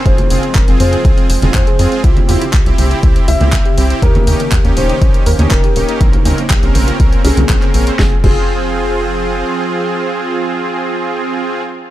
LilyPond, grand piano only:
\new Staff \with { instrumentName = "Grand piano" } { \time 4/4 \key f \minor \tempo 4 = 121 c''4. c''4. c''4 | r2 r8 e''4. | bes'4. c''4. bes'4 | r2 r8 aes'4. |
aes'8 aes'2.~ aes'8~ | aes'1 | }